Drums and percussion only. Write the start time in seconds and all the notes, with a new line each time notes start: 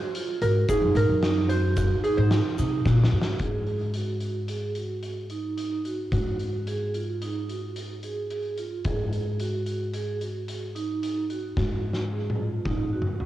0.15 closed hi-hat
0.42 closed hi-hat, shaker
0.69 kick, closed hi-hat, shaker
0.96 closed hi-hat, shaker
1.23 snare, closed hi-hat
1.50 closed hi-hat, shaker
1.76 kick, snare, closed hi-hat, shaker
2.04 closed hi-hat
2.31 snare, closed hi-hat, shaker
2.58 closed hi-hat, shaker
2.85 kick, snare, shaker
3.03 snare
3.21 snare
3.39 kick, closed hi-hat
3.67 closed hi-hat
3.94 closed hi-hat
4.21 closed hi-hat
4.48 closed hi-hat
4.75 closed hi-hat
5.03 closed hi-hat
5.30 closed hi-hat
5.58 closed hi-hat
5.85 closed hi-hat
6.12 kick, closed hi-hat
6.40 closed hi-hat
6.67 closed hi-hat
6.94 closed hi-hat
7.22 closed hi-hat
7.49 closed hi-hat
7.76 closed hi-hat
8.03 closed hi-hat
8.30 closed hi-hat
8.57 closed hi-hat
8.84 kick, closed hi-hat
9.12 closed hi-hat
9.39 closed hi-hat
9.66 closed hi-hat
9.93 closed hi-hat
10.21 closed hi-hat
10.48 closed hi-hat
10.76 closed hi-hat
11.03 closed hi-hat
11.30 closed hi-hat
11.57 kick, snare
11.93 snare
12.30 high tom
12.65 kick, high tom
13.02 mid tom
13.20 mid tom